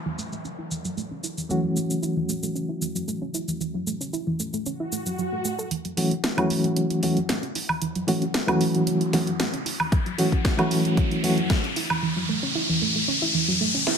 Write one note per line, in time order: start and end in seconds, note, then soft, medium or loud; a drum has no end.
0.00 1.46 E3 medium
0.00 1.47 F#3 medium
0.00 1.47 A3 medium
0.00 1.47 C#4 medium
0.00 1.48 F#4 medium
0.00 downlifter medium
0.06 0.14 E3 medium
0.18 0.31 A3 medium
0.18 cabasa medium
0.32 0.37 A3 medium
0.32 cabasa soft
0.45 0.58 C#4 medium
0.45 cabasa soft
0.59 0.66 E4 medium
0.71 0.80 E3 medium
0.71 cabasa medium
0.85 0.90 F#3 medium
0.85 cabasa soft
0.97 1.10 A3 medium
0.97 cabasa soft
1.11 1.19 C#4 medium
1.24 1.32 E4 medium
1.24 cabasa medium
1.38 1.42 E3 medium
1.38 cabasa soft
1.49 5.41 E3 medium
1.49 1.63 E3 medium
1.49 5.42 F#3 medium
1.49 5.42 A3 medium
1.49 5.42 C#4 medium
1.49 5.42 F#4 medium
1.49 cabasa soft
1.64 1.72 F#3 medium
1.76 1.85 A3 medium
1.76 cabasa medium
1.90 2.02 C#4 medium
1.90 cabasa soft
2.03 2.16 E4 medium
2.03 cabasa soft
2.17 2.25 E3 loud
2.29 2.42 A3 medium
2.29 cabasa medium
2.43 2.48 A3 medium
2.43 cabasa soft
2.55 2.68 C#4 medium
2.55 cabasa soft
2.69 2.77 E4 medium
2.81 2.90 E3 medium
2.81 cabasa medium
2.95 3.00 F#3 medium
2.95 cabasa soft
3.08 3.21 A3 medium
3.08 cabasa soft
3.22 3.30 C#4 medium
3.34 3.43 E4 medium
3.34 cabasa medium
3.48 3.53 E3 medium
3.48 cabasa soft
3.61 3.74 E3 medium
3.61 cabasa soft
3.74 3.82 F#3 medium
3.87 3.96 A3 medium
3.87 cabasa medium
4.01 4.12 C#4 medium
4.01 cabasa soft
4.13 4.26 E4 medium
4.13 cabasa soft
4.27 4.35 E3 loud
4.40 4.52 A3 medium
4.40 cabasa medium
4.53 4.58 A3 medium
4.53 cabasa soft
4.66 4.79 C#4 medium
4.66 swell medium
4.66 cabasa soft
4.80 4.88 E4 medium
4.92 5.01 A3 medium
4.92 cabasa medium
5.06 5.14 F#3 medium
5.06 cabasa soft
5.19 5.27 F#3 medium
5.19 cabasa soft
5.32 5.40 A3 medium
5.45 5.54 A3 medium
5.45 cabasa medium
5.59 5.70 A4 medium
5.59 cabasa soft
5.71 5.84 E3 medium
5.71 closed hi-hat medium
5.71 riser medium
5.85 5.93 F#3 medium
5.85 closed hi-hat soft
5.97 6.13 E3 medium
5.97 6.13 F#3 medium
5.97 6.06 A3 medium
5.97 6.13 A3 medium
5.97 6.13 C#4 medium
5.97 6.13 F#4 medium
5.97 open hi-hat loud
6.11 6.23 C#4 medium
6.11 closed hi-hat soft
6.24 6.37 E4 medium
6.24 snare loud
6.24 closed hi-hat medium
6.37 6.99 E3 medium
6.37 6.46 E3 loud
6.37 7.00 F#3 medium
6.37 7.00 A3 medium
6.37 7.00 C#4 medium
6.37 7.00 F#4 loud
6.37 closed hi-hat soft
6.37 high woodblock medium
6.50 6.63 A3 medium
6.50 open hi-hat medium
6.64 6.69 A3 medium
6.64 closed hi-hat soft
6.76 6.90 C#4 medium
6.76 closed hi-hat medium
6.90 6.98 E4 medium
6.90 closed hi-hat soft
7.03 7.18 E3 medium
7.03 7.11 E3 medium
7.03 7.18 F#3 medium
7.03 7.18 A3 medium
7.03 7.18 C#4 medium
7.03 7.19 F#4 medium
7.03 open hi-hat loud
7.17 7.21 F#3 medium
7.17 closed hi-hat soft
7.29 7.42 A3 medium
7.29 snare loud
7.29 closed hi-hat medium
7.43 7.51 C#4 medium
7.43 closed hi-hat soft
7.55 7.64 E4 medium
7.55 open hi-hat medium
7.69 7.74 E3 medium
7.69 high woodblock medium
7.82 7.95 E3 medium
7.82 closed hi-hat medium
7.95 8.03 F#3 medium
7.95 closed hi-hat soft
8.07 8.23 E3 medium
8.07 8.23 F#3 medium
8.07 8.23 A3 medium
8.07 8.17 A3 medium
8.07 8.24 C#4 medium
8.07 8.24 F#4 medium
8.07 open hi-hat loud
8.22 8.34 C#4 medium
8.22 closed hi-hat soft
8.34 8.47 E4 medium
8.34 snare loud
8.34 closed hi-hat medium
8.47 9.10 E3 loud
8.47 8.56 E3 loud
8.47 9.10 F#3 medium
8.47 9.10 A3 medium
8.47 9.11 C#4 medium
8.47 9.11 F#4 loud
8.47 closed hi-hat soft
8.47 high woodblock medium
8.61 8.73 A3 medium
8.61 open hi-hat medium
8.75 8.79 A3 medium
8.75 closed hi-hat soft
8.87 9.00 C#4 medium
8.87 closed hi-hat medium
9.01 9.09 E4 medium
9.01 closed hi-hat soft
9.13 9.28 E3 medium
9.13 9.22 E3 medium
9.13 9.29 F#3 medium
9.13 9.29 A3 medium
9.13 9.29 C#4 medium
9.13 9.29 F#4 medium
9.13 snare medium
9.13 open hi-hat loud
9.27 9.32 F#3 medium
9.27 closed hi-hat soft
9.40 9.53 A3 medium
9.40 snare loud
9.40 closed hi-hat medium
9.53 9.61 C#4 medium
9.53 closed hi-hat soft
9.66 9.75 E4 medium
9.66 open hi-hat medium
9.80 9.85 E3 medium
9.80 high woodblock medium
9.92 10.05 E3 medium
9.92 kick loud
9.92 closed hi-hat medium
10.06 10.14 F#3 medium
10.06 closed hi-hat soft
10.18 10.34 E3 medium
10.18 10.34 F#3 medium
10.18 10.27 A3 medium
10.18 10.34 A3 medium
10.18 10.34 C#4 medium
10.18 10.34 F#4 medium
10.18 open hi-hat loud
10.32 10.44 C#4 medium
10.32 kick medium
10.32 closed hi-hat soft
10.45 10.58 E4 medium
10.45 kick loud
10.45 snare loud
10.45 closed hi-hat medium
10.57 11.20 E3 loud
10.57 10.66 E3 loud
10.57 11.20 F#3 medium
10.57 11.21 A3 medium
10.57 11.21 C#4 medium
10.57 11.21 F#4 loud
10.57 closed hi-hat soft
10.57 high woodblock medium
10.71 10.84 A3 medium
10.71 open hi-hat medium
10.85 10.90 A3 medium
10.85 closed hi-hat soft
10.97 11.11 C#4 medium
10.97 kick loud
10.97 closed hi-hat medium
11.11 11.19 E4 medium
11.11 closed hi-hat soft
11.23 11.39 E3 medium
11.23 11.33 E3 medium
11.23 11.39 F#3 medium
11.23 11.39 A3 medium
11.23 11.39 C#4 medium
11.23 11.39 F#4 medium
11.23 open hi-hat loud
11.38 11.42 F#3 medium
11.38 closed hi-hat soft
11.50 11.63 A3 medium
11.50 kick loud
11.50 snare loud
11.50 closed hi-hat medium
11.64 11.72 C#4 medium
11.64 closed hi-hat soft
11.76 11.85 E4 medium
11.76 open hi-hat medium
11.90 11.95 E3 medium
11.90 high woodblock medium
12.03 12.16 E3 medium
12.16 12.24 F#3 medium
12.29 12.38 A3 medium
12.43 12.55 C#4 medium
12.55 12.68 E4 medium
12.69 12.77 E3 loud
12.82 12.94 A3 medium
12.96 13.00 A3 medium
13.08 13.21 C#4 medium
13.22 13.30 E4 medium
13.34 13.43 E3 medium
13.48 13.53 F#3 medium
13.61 13.74 A3 medium
13.74 13.82 C#4 medium
13.87 13.96 E4 medium
13.87 snare medium